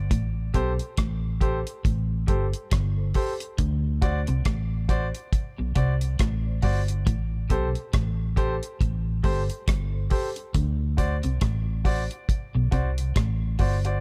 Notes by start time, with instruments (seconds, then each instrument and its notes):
Already playing: fingered electric bass G1
0.11 fingered electric bass A1, clean electric guitar A2, kick, closed hi-hat
0.54 fingered electric bass B1, clean electric guitar B2, grand piano G4 A4 C5, kick, closed hi-hat
0.79 closed hi-hat
0.97 fingered electric bass A1, clean electric guitar A2, kick, cross-stick, closed hi-hat
1.41 grand piano G4 A4 C5, kick, closed hi-hat
1.67 closed hi-hat
1.85 fingered electric bass A1, clean electric guitar A2, kick, closed hi-hat
2.27 fingered electric bass G1, clean electric guitar G2, grand piano G4 A4 C5, kick, closed hi-hat
2.54 closed hi-hat
2.71 fingered electric bass G1, clean electric guitar G2, kick, cross-stick, closed hi-hat
2.97 grand piano A4 C5
3.14 grand piano G4 A4 C5, kick, open hi-hat
3.40 closed hi-hat
3.58 fingered electric bass D2, clean electric guitar D3, kick, closed hi-hat
4.02 grand piano F#4 C5 D5, kick, closed hi-hat
4.27 fingered electric bass C2, clean electric guitar C3, closed hi-hat
4.45 fingered electric bass A1, clean electric guitar A2, kick, cross-stick, closed hi-hat
4.89 grand piano F#4 C5 D5, kick, closed hi-hat
5.15 closed hi-hat
5.33 kick, closed hi-hat
5.58 fingered electric bass B1, clean electric guitar B2
5.75 fingered electric bass C2, clean electric guitar C3, grand piano F#4 C5 D5, kick, closed hi-hat
6.01 closed hi-hat
6.19 fingered electric bass A1, clean electric guitar A2, kick, cross-stick, closed hi-hat
6.46 grand piano C5 D5
6.62 fingered electric bass G1, clean electric guitar G2, grand piano F#4 C5 D5, kick, open hi-hat
6.88 closed hi-hat
7.06 fingered electric bass A1, clean electric guitar A2, kick, closed hi-hat
7.50 fingered electric bass B1, clean electric guitar B2, grand piano G4 A4 C5, kick, closed hi-hat
7.75 closed hi-hat
7.93 fingered electric bass A1, clean electric guitar A2, kick, cross-stick, closed hi-hat
8.36 grand piano G4 A4 C5, kick, closed hi-hat
8.63 closed hi-hat
8.81 fingered electric bass A1, clean electric guitar A2, kick, closed hi-hat
9.23 fingered electric bass G1, clean electric guitar G2, grand piano G4 A4 C5, kick, open hi-hat
9.50 closed hi-hat
9.68 fingered electric bass G1, clean electric guitar G2, kick, cross-stick, closed hi-hat
9.93 grand piano A4 C5
10.10 grand piano G4 A4 C5, kick, open hi-hat
10.36 closed hi-hat
10.54 fingered electric bass D2, clean electric guitar D3, kick, closed hi-hat
10.97 grand piano F#4 C5 D5, kick, closed hi-hat
11.23 fingered electric bass C2, clean electric guitar C3, closed hi-hat
11.41 fingered electric bass A1, clean electric guitar A2, kick, cross-stick, closed hi-hat
11.85 grand piano F#4 C5 D5, kick, open hi-hat
12.11 closed hi-hat
12.29 kick, closed hi-hat
12.55 fingered electric bass B1, clean electric guitar B2
12.71 fingered electric bass C2, clean electric guitar C3, grand piano F#4 C5 D5, kick, closed hi-hat
12.98 closed hi-hat
13.16 fingered electric bass A1, clean electric guitar A2, kick, cross-stick, closed hi-hat
13.59 fingered electric bass G1, clean electric guitar G2, grand piano F#4 C5 D5, kick, open hi-hat
13.85 grand piano F#4 C5 D5, closed hi-hat